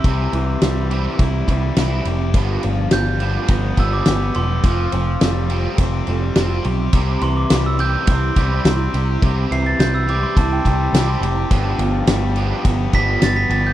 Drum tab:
RD |xxxxxxxx|xxxxxxxx|xxxxxxxx|xxxxxxxx|
SD |--o---o-|--o---o-|--o---o-|--o---o-|
BD |o---oo--|o---oo--|o---o---|o---oo--|

RD |xxxxxxxx|xxxxxxxx|
SD |--o---o-|--o---o-|
BD |o---oo--|o---oo--|